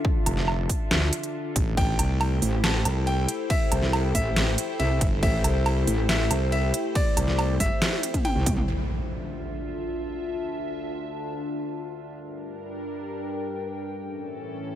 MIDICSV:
0, 0, Header, 1, 8, 480
1, 0, Start_track
1, 0, Tempo, 431655
1, 52, Time_signature, 4, 2, 24, 8
1, 16404, End_track
2, 0, Start_track
2, 0, Title_t, "Grand piano"
2, 0, Program_c, 0, 0
2, 1972, Note_on_c, 0, 79, 100
2, 2837, Note_off_c, 0, 79, 0
2, 2932, Note_on_c, 0, 81, 91
2, 3214, Note_off_c, 0, 81, 0
2, 3413, Note_on_c, 0, 79, 93
2, 3694, Note_off_c, 0, 79, 0
2, 3893, Note_on_c, 0, 76, 97
2, 4517, Note_off_c, 0, 76, 0
2, 4612, Note_on_c, 0, 76, 98
2, 5237, Note_off_c, 0, 76, 0
2, 5332, Note_on_c, 0, 76, 92
2, 5613, Note_off_c, 0, 76, 0
2, 5812, Note_on_c, 0, 76, 99
2, 6677, Note_off_c, 0, 76, 0
2, 6772, Note_on_c, 0, 76, 92
2, 7053, Note_off_c, 0, 76, 0
2, 7252, Note_on_c, 0, 76, 94
2, 7533, Note_off_c, 0, 76, 0
2, 7732, Note_on_c, 0, 74, 95
2, 8357, Note_off_c, 0, 74, 0
2, 8453, Note_on_c, 0, 76, 96
2, 9077, Note_off_c, 0, 76, 0
2, 9172, Note_on_c, 0, 79, 92
2, 9453, Note_off_c, 0, 79, 0
2, 16404, End_track
3, 0, Start_track
3, 0, Title_t, "Ambient pad"
3, 0, Program_c, 1, 92
3, 0, Note_on_c, 1, 65, 74
3, 0, Note_on_c, 1, 76, 81
3, 0, Note_on_c, 1, 81, 93
3, 1973, Note_off_c, 1, 65, 0
3, 1974, Note_on_c, 1, 64, 72
3, 2061, Note_on_c, 1, 69, 77
3, 2094, Note_on_c, 1, 79, 87
3, 2332, Note_on_c, 1, 72, 81
3, 2819, Note_off_c, 1, 76, 0
3, 3354, Note_off_c, 1, 81, 0
3, 9653, Note_off_c, 1, 64, 0
3, 9653, Note_off_c, 1, 72, 0
3, 9653, Note_on_c, 1, 62, 85
3, 9709, Note_on_c, 1, 65, 75
3, 10046, Note_on_c, 1, 81, 91
3, 10287, Note_on_c, 1, 76, 83
3, 11089, Note_off_c, 1, 79, 0
3, 11189, Note_off_c, 1, 69, 0
3, 13493, Note_off_c, 1, 81, 0
3, 13609, Note_on_c, 1, 70, 71
3, 13629, Note_on_c, 1, 79, 79
3, 13822, Note_on_c, 1, 82, 88
3, 14261, Note_off_c, 1, 65, 0
3, 14261, Note_off_c, 1, 76, 0
3, 15412, Note_off_c, 1, 70, 0
3, 15413, Note_off_c, 1, 62, 0
3, 15413, Note_off_c, 1, 82, 0
3, 15413, Note_on_c, 1, 61, 83
3, 15594, Note_on_c, 1, 69, 73
3, 15602, Note_on_c, 1, 76, 90
3, 16157, Note_on_c, 1, 81, 80
3, 16181, Note_off_c, 1, 79, 0
3, 16404, Note_off_c, 1, 61, 0
3, 16404, Note_off_c, 1, 69, 0
3, 16404, Note_off_c, 1, 76, 0
3, 16404, Note_off_c, 1, 81, 0
3, 16404, End_track
4, 0, Start_track
4, 0, Title_t, "Ambient pad"
4, 0, Program_c, 2, 92
4, 0, Note_on_c, 2, 50, 85
4, 0, Note_on_c, 2, 62, 78
4, 0, Note_on_c, 2, 65, 78
4, 0, Note_on_c, 2, 69, 89
4, 1928, Note_off_c, 2, 50, 0
4, 1928, Note_off_c, 2, 62, 0
4, 1928, Note_off_c, 2, 65, 0
4, 1928, Note_off_c, 2, 69, 0
4, 1972, Note_on_c, 2, 57, 84
4, 1972, Note_on_c, 2, 67, 78
4, 1973, Note_on_c, 2, 64, 75
4, 1973, Note_on_c, 2, 72, 92
4, 9608, Note_off_c, 2, 57, 0
4, 9608, Note_off_c, 2, 64, 0
4, 9608, Note_off_c, 2, 67, 0
4, 9608, Note_off_c, 2, 72, 0
4, 9652, Note_on_c, 2, 76, 85
4, 9653, Note_on_c, 2, 38, 77
4, 9653, Note_on_c, 2, 50, 70
4, 9653, Note_on_c, 2, 65, 72
4, 13454, Note_off_c, 2, 38, 0
4, 13454, Note_off_c, 2, 50, 0
4, 13454, Note_off_c, 2, 65, 0
4, 13454, Note_off_c, 2, 76, 0
4, 13492, Note_on_c, 2, 43, 81
4, 13492, Note_on_c, 2, 55, 72
4, 13492, Note_on_c, 2, 62, 72
4, 13492, Note_on_c, 2, 70, 88
4, 15393, Note_off_c, 2, 43, 0
4, 15393, Note_off_c, 2, 55, 0
4, 15393, Note_off_c, 2, 62, 0
4, 15393, Note_off_c, 2, 70, 0
4, 15412, Note_on_c, 2, 45, 79
4, 15412, Note_on_c, 2, 52, 74
4, 15412, Note_on_c, 2, 61, 72
4, 15412, Note_on_c, 2, 69, 88
4, 16404, Note_off_c, 2, 45, 0
4, 16404, Note_off_c, 2, 52, 0
4, 16404, Note_off_c, 2, 61, 0
4, 16404, Note_off_c, 2, 69, 0
4, 16404, End_track
5, 0, Start_track
5, 0, Title_t, "Wobble bass"
5, 0, Program_c, 3, 39
5, 292, Note_on_c, 3, 29, 96
5, 753, Note_off_c, 3, 29, 0
5, 1732, Note_on_c, 3, 33, 99
5, 1953, Note_off_c, 3, 33, 0
5, 1973, Note_on_c, 3, 33, 94
5, 2194, Note_off_c, 3, 33, 0
5, 2212, Note_on_c, 3, 36, 98
5, 2673, Note_off_c, 3, 36, 0
5, 3173, Note_on_c, 3, 36, 96
5, 3633, Note_off_c, 3, 36, 0
5, 4133, Note_on_c, 3, 36, 94
5, 4594, Note_off_c, 3, 36, 0
5, 5573, Note_on_c, 3, 31, 100
5, 5794, Note_off_c, 3, 31, 0
5, 5813, Note_on_c, 3, 33, 95
5, 6033, Note_off_c, 3, 33, 0
5, 6052, Note_on_c, 3, 36, 96
5, 6513, Note_off_c, 3, 36, 0
5, 7012, Note_on_c, 3, 36, 96
5, 7473, Note_off_c, 3, 36, 0
5, 7972, Note_on_c, 3, 36, 101
5, 8433, Note_off_c, 3, 36, 0
5, 16404, End_track
6, 0, Start_track
6, 0, Title_t, "Wobble bass"
6, 0, Program_c, 4, 39
6, 1012, Note_on_c, 4, 38, 96
6, 1233, Note_off_c, 4, 38, 0
6, 2693, Note_on_c, 4, 33, 97
6, 3154, Note_off_c, 4, 33, 0
6, 4613, Note_on_c, 4, 33, 98
6, 5073, Note_off_c, 4, 33, 0
6, 5333, Note_on_c, 4, 36, 103
6, 5554, Note_off_c, 4, 36, 0
6, 6533, Note_on_c, 4, 33, 100
6, 6993, Note_off_c, 4, 33, 0
6, 8453, Note_on_c, 4, 31, 100
6, 8554, Note_off_c, 4, 31, 0
6, 9293, Note_on_c, 4, 36, 99
6, 9633, Note_off_c, 4, 36, 0
6, 16404, End_track
7, 0, Start_track
7, 0, Title_t, "Impact"
7, 0, Program_c, 5, 103
7, 9652, Note_on_c, 5, 60, 67
7, 11573, Note_off_c, 5, 60, 0
7, 16404, End_track
8, 0, Start_track
8, 0, Title_t, "Drums"
8, 53, Note_on_c, 9, 36, 127
8, 164, Note_off_c, 9, 36, 0
8, 293, Note_on_c, 9, 42, 83
8, 293, Note_on_c, 9, 77, 57
8, 404, Note_off_c, 9, 42, 0
8, 404, Note_off_c, 9, 77, 0
8, 413, Note_on_c, 9, 38, 39
8, 524, Note_off_c, 9, 38, 0
8, 533, Note_on_c, 9, 77, 80
8, 644, Note_off_c, 9, 77, 0
8, 773, Note_on_c, 9, 36, 68
8, 773, Note_on_c, 9, 46, 90
8, 884, Note_off_c, 9, 36, 0
8, 884, Note_off_c, 9, 46, 0
8, 1013, Note_on_c, 9, 38, 123
8, 1124, Note_off_c, 9, 38, 0
8, 1253, Note_on_c, 9, 42, 78
8, 1364, Note_off_c, 9, 42, 0
8, 1373, Note_on_c, 9, 42, 36
8, 1484, Note_off_c, 9, 42, 0
8, 1733, Note_on_c, 9, 36, 109
8, 1733, Note_on_c, 9, 42, 80
8, 1844, Note_off_c, 9, 36, 0
8, 1844, Note_off_c, 9, 42, 0
8, 1973, Note_on_c, 9, 36, 126
8, 1973, Note_on_c, 9, 51, 64
8, 2084, Note_off_c, 9, 36, 0
8, 2084, Note_off_c, 9, 51, 0
8, 2213, Note_on_c, 9, 42, 78
8, 2213, Note_on_c, 9, 77, 57
8, 2324, Note_off_c, 9, 42, 0
8, 2324, Note_off_c, 9, 77, 0
8, 2453, Note_on_c, 9, 51, 46
8, 2453, Note_on_c, 9, 77, 79
8, 2564, Note_off_c, 9, 51, 0
8, 2564, Note_off_c, 9, 77, 0
8, 2693, Note_on_c, 9, 46, 93
8, 2804, Note_off_c, 9, 46, 0
8, 2933, Note_on_c, 9, 38, 120
8, 2933, Note_on_c, 9, 51, 68
8, 3044, Note_off_c, 9, 38, 0
8, 3044, Note_off_c, 9, 51, 0
8, 3173, Note_on_c, 9, 42, 76
8, 3173, Note_on_c, 9, 77, 63
8, 3284, Note_off_c, 9, 42, 0
8, 3284, Note_off_c, 9, 77, 0
8, 3413, Note_on_c, 9, 51, 46
8, 3524, Note_off_c, 9, 51, 0
8, 3653, Note_on_c, 9, 42, 79
8, 3764, Note_off_c, 9, 42, 0
8, 3893, Note_on_c, 9, 36, 115
8, 3893, Note_on_c, 9, 51, 67
8, 4004, Note_off_c, 9, 36, 0
8, 4004, Note_off_c, 9, 51, 0
8, 4133, Note_on_c, 9, 42, 76
8, 4133, Note_on_c, 9, 77, 59
8, 4244, Note_off_c, 9, 42, 0
8, 4244, Note_off_c, 9, 77, 0
8, 4253, Note_on_c, 9, 38, 35
8, 4365, Note_off_c, 9, 38, 0
8, 4373, Note_on_c, 9, 51, 46
8, 4373, Note_on_c, 9, 77, 82
8, 4484, Note_off_c, 9, 51, 0
8, 4484, Note_off_c, 9, 77, 0
8, 4613, Note_on_c, 9, 36, 60
8, 4613, Note_on_c, 9, 46, 94
8, 4724, Note_off_c, 9, 36, 0
8, 4724, Note_off_c, 9, 46, 0
8, 4853, Note_on_c, 9, 38, 116
8, 4853, Note_on_c, 9, 51, 70
8, 4965, Note_off_c, 9, 38, 0
8, 4965, Note_off_c, 9, 51, 0
8, 5093, Note_on_c, 9, 42, 76
8, 5205, Note_off_c, 9, 42, 0
8, 5333, Note_on_c, 9, 51, 49
8, 5445, Note_off_c, 9, 51, 0
8, 5573, Note_on_c, 9, 36, 106
8, 5573, Note_on_c, 9, 42, 75
8, 5684, Note_off_c, 9, 36, 0
8, 5684, Note_off_c, 9, 42, 0
8, 5813, Note_on_c, 9, 36, 120
8, 5813, Note_on_c, 9, 51, 68
8, 5924, Note_off_c, 9, 36, 0
8, 5924, Note_off_c, 9, 51, 0
8, 6053, Note_on_c, 9, 42, 80
8, 6053, Note_on_c, 9, 77, 56
8, 6164, Note_off_c, 9, 42, 0
8, 6164, Note_off_c, 9, 77, 0
8, 6293, Note_on_c, 9, 51, 49
8, 6293, Note_on_c, 9, 77, 78
8, 6404, Note_off_c, 9, 51, 0
8, 6404, Note_off_c, 9, 77, 0
8, 6533, Note_on_c, 9, 46, 101
8, 6644, Note_off_c, 9, 46, 0
8, 6773, Note_on_c, 9, 38, 115
8, 6773, Note_on_c, 9, 51, 67
8, 6884, Note_off_c, 9, 38, 0
8, 6884, Note_off_c, 9, 51, 0
8, 7013, Note_on_c, 9, 42, 78
8, 7013, Note_on_c, 9, 77, 63
8, 7124, Note_off_c, 9, 42, 0
8, 7124, Note_off_c, 9, 77, 0
8, 7253, Note_on_c, 9, 51, 50
8, 7364, Note_off_c, 9, 51, 0
8, 7493, Note_on_c, 9, 42, 80
8, 7605, Note_off_c, 9, 42, 0
8, 7733, Note_on_c, 9, 36, 116
8, 7733, Note_on_c, 9, 51, 67
8, 7844, Note_off_c, 9, 36, 0
8, 7844, Note_off_c, 9, 51, 0
8, 7973, Note_on_c, 9, 42, 83
8, 7973, Note_on_c, 9, 77, 55
8, 8084, Note_off_c, 9, 42, 0
8, 8084, Note_off_c, 9, 77, 0
8, 8093, Note_on_c, 9, 38, 37
8, 8204, Note_off_c, 9, 38, 0
8, 8213, Note_on_c, 9, 51, 46
8, 8213, Note_on_c, 9, 77, 76
8, 8324, Note_off_c, 9, 51, 0
8, 8324, Note_off_c, 9, 77, 0
8, 8453, Note_on_c, 9, 36, 60
8, 8453, Note_on_c, 9, 46, 97
8, 8564, Note_off_c, 9, 36, 0
8, 8564, Note_off_c, 9, 46, 0
8, 8693, Note_on_c, 9, 38, 117
8, 8693, Note_on_c, 9, 48, 64
8, 8693, Note_on_c, 9, 51, 68
8, 8804, Note_off_c, 9, 38, 0
8, 8804, Note_off_c, 9, 48, 0
8, 8804, Note_off_c, 9, 51, 0
8, 8813, Note_on_c, 9, 48, 59
8, 8924, Note_off_c, 9, 48, 0
8, 8933, Note_on_c, 9, 42, 80
8, 9044, Note_off_c, 9, 42, 0
8, 9053, Note_on_c, 9, 36, 61
8, 9053, Note_on_c, 9, 42, 38
8, 9053, Note_on_c, 9, 47, 68
8, 9164, Note_off_c, 9, 36, 0
8, 9164, Note_off_c, 9, 42, 0
8, 9164, Note_off_c, 9, 47, 0
8, 9172, Note_on_c, 9, 47, 89
8, 9172, Note_on_c, 9, 51, 50
8, 9284, Note_off_c, 9, 47, 0
8, 9284, Note_off_c, 9, 51, 0
8, 9412, Note_on_c, 9, 42, 84
8, 9412, Note_on_c, 9, 45, 100
8, 9413, Note_on_c, 9, 36, 104
8, 9523, Note_off_c, 9, 42, 0
8, 9523, Note_off_c, 9, 45, 0
8, 9524, Note_off_c, 9, 36, 0
8, 9533, Note_on_c, 9, 45, 93
8, 9644, Note_off_c, 9, 45, 0
8, 16404, End_track
0, 0, End_of_file